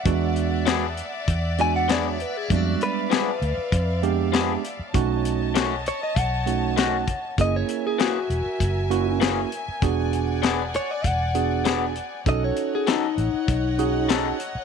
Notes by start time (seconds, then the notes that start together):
Already playing: D5 E5 F#5
0.05 E2 G#3 B3 D4 F#4, kick, closed hi-hat
0.36 closed hi-hat
0.66 F#3 B3 D4 G#4, snare, closed hi-hat
0.97 closed hi-hat
1.28 E2, kick, closed hi-hat
1.58 G#3 B3 D4 F#4 G#5, closed hi-hat
1.76 F#5
1.88 F#3 B3 D4 G#4 D5, snare, closed hi-hat
2.07 C#5
2.20 B4, closed hi-hat
2.37 G#4
2.50 F2 G3 G#3 B3 D4 F#4 F5, kick, closed hi-hat
2.81 B4, closed hi-hat
3.10 F3 B3 D4 G#4, snare, closed hi-hat
3.42 D2, closed hi-hat
3.72 F2, kick, closed hi-hat
4.03 G#3 B3 D4 G4, closed hi-hat
4.32 F3 B3 D4 G#4, snare, closed hi-hat
4.64 closed hi-hat
4.79 muted fingered electric bass stroke
4.94 B1 A3 C#4 D#4 F#4 C#5 D#5 A5, kick, closed hi-hat
5.25 closed hi-hat
5.55 D#3 A3 C#4 F#4, snare, closed hi-hat
5.86 C#5, closed hi-hat
6.03 D#5
6.16 B1 F#5, kick, closed hi-hat
6.46 A3 C#4 D#4 F#4, closed hi-hat
6.77 D#3 A3 C#4 F#4, snare, closed hi-hat
7.07 kick, closed hi-hat
7.38 F#1 A#3 C#4 E4 G#4 A#4 D#5 E5 G#5, kick, closed hi-hat
7.56 C#5
7.68 closed hi-hat
7.87 G#4
7.99 E3 A#3 C#4 F#4 G#4, snare, closed hi-hat
8.30 E1, closed hi-hat
8.46 muted fingered electric bass stroke
8.60 F#1, kick, closed hi-hat
8.90 A#3 C#4 E4 F#4, closed hi-hat
9.20 E3 A#3 C#4 G#4, snare, closed hi-hat
9.52 closed hi-hat
9.68 muted fingered electric bass stroke
9.82 E1 B3 D4 F#4 G#4 D5 F#5, kick, closed hi-hat
10.13 closed hi-hat
10.42 F#3 B3 D4 G#4, snare, closed hi-hat
10.74 C#5, closed hi-hat
10.91 D5
11.04 E1 F#5, kick, closed hi-hat
11.34 B3 D4 F#4 G#4, closed hi-hat
11.65 F#3 B3 D4 G#4, snare, closed hi-hat
11.95 closed hi-hat
12.26 B1 C#4 D#4 F#4 A4 C#5 D#5 F#5, kick, closed hi-hat
12.44 C#5
12.56 closed hi-hat
12.75 G#4
12.87 F#3 C#4 D#4 A4, snare, closed hi-hat
13.18 A1, closed hi-hat
13.34 muted fingered electric bass stroke
13.48 B1, kick, closed hi-hat
13.78 C#4 D#4 F#4 G#4, closed hi-hat
14.09 F#3 C#4 D#4 A4, snare, closed hi-hat
14.40 closed hi-hat
14.55 muted fingered electric bass stroke